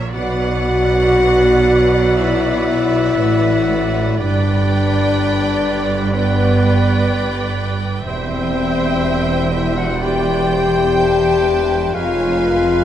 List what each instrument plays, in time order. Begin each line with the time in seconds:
Already playing: double bass section A#1, cello section A#2
0.13 double bass section B1, cello section B2, bassoon F#3, french horn section F#4, viola section B4 D5, oboe B4, flute D5, violin section F#5, clarinet F#5
2.16 french horn section E4, clarinet E5, violin section E5
3.19 double bass section A1, cello section A2
4.18 double bass section G1, cello section G2, bassoon G3, french horn section D4, oboe B4, viola section B4 D5, clarinet D5, violin section D5 G5, flute D5
6.13 bassoon G3, french horn section B3, violin section B4 G5, oboe B4, viola section B4 D5, clarinet B4, flute D5
8.06 double bass section E1, cello section E2, bassoon G3, french horn section C4, clarinet C5, oboe C5, violin section C5 G5, viola section C5 E5, flute E5
9.52 french horn section E4, clarinet E5, violin section E5
9.77 french horn section F#4, clarinet F#5, violin section F#5
10.00 bassoon G3, french horn section G4, viola section B4 D5, oboe C5, flute E5, clarinet G5, violin section G5
10.49 viola section C5
10.97 viola section C5, violin section A5
11.45 viola section B4
11.94 double bass section F1, cello section F2, bassoon G#3, french horn section F4, viola section A#4 C#5, oboe B4, clarinet F5, flute F5, violin section F5 G#5
12.41 viola section B4